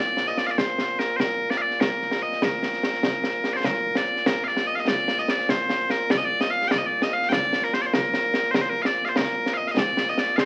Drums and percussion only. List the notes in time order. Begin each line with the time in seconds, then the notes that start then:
0.17 snare
0.27 snare
0.37 snare
0.48 snare
0.58 concert bass drum, snare
0.78 snare
0.99 snare
1.20 concert bass drum, snare
1.50 snare
1.71 snare
1.81 concert bass drum, snare
2.02 snare
2.11 snare
2.32 snare
2.42 concert bass drum, snare
2.63 snare
2.73 snare
2.83 snare
2.93 snare
3.03 concert bass drum, snare
3.24 snare
3.44 snare
3.64 concert bass drum, snare
3.95 snare
4.16 snare
4.26 concert bass drum, snare
4.47 snare
4.57 snare
4.77 snare
4.87 concert bass drum, snare
5.08 snare
5.18 snare
5.28 snare
5.39 snare
5.49 concert bass drum, snare
5.70 snare
5.90 snare
6.10 concert bass drum, snare
6.41 snare
6.61 snare
6.71 concert bass drum, snare
7.02 snare
7.22 snare
7.32 concert bass drum, snare
7.53 snare
7.63 snare
7.73 snare
7.84 snare
7.93 concert bass drum, snare
8.14 snare
8.34 snare
8.54 concert bass drum, snare
8.85 snare
9.06 snare
9.16 concert bass drum, snare
9.46 snare
9.67 snare
9.77 concert bass drum, snare
9.97 snare
10.07 snare
10.18 snare
10.28 snare
10.38 concert bass drum, snare